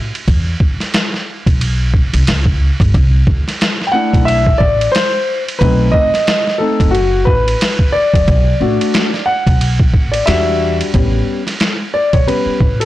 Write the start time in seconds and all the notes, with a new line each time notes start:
0.15 ride
0.28 E2, kick, ride
0.60 kick
0.80 snare, ride
0.94 snare, hi-hat pedal, ride
1.14 snare
1.46 B1, kick, ride
1.61 ride
1.94 kick
2.13 C2, ride
2.27 C#2, snare, hi-hat pedal, ride
2.46 kick
2.80 G1, kick, ride
2.94 C2, kick, ride
3.27 D2, kick
3.48 snare, ride
3.61 snare, hi-hat pedal, ride
3.82 snare
3.87 G5
3.92 A3 D4 E4 F#5
4.14 B1, kick, ride
4.25 E5, ride
4.47 kick
4.58 A1 D5, kick
4.81 ride
4.92 C5, hi-hat pedal, ride
4.96 snare
5.48 ride
5.59 B1 A3 C4 D#4 B4, kick, ride
5.92 D#5, kick
6.14 snare, ride
6.27 snare, hi-hat pedal, ride
6.47 snare
6.58 A3 C4 D#4 A4
6.80 F#1, kick, ride
6.91 F#4, ride
7.25 A1 B4, kick
7.48 ride
7.61 snare, hi-hat pedal, ride
7.79 kick
7.92 D5
8.14 F#1, kick, ride
8.28 B1, kick, ride
8.60 A1 A3 D4 F#4
8.81 ride
8.94 snare, hi-hat pedal, ride
9.14 snare
9.26 F#5
9.47 B1, kick, ride
9.61 ride
9.80 kick
9.94 A1, kick
10.12 D5, ride
10.26 E2 G3 D4 F#4 E5, snare, hi-hat pedal, ride
10.81 ride
10.93 A1 G3 B3 C#4, kick, ride
11.47 snare, ride
11.60 snare, hi-hat pedal, ride
11.94 D5
12.13 B1 C#5, kick, ride
12.27 G3 B3 C#4 B4, ride
12.46 muted upright bass stroke
12.61 A1, kick
12.80 A4, ride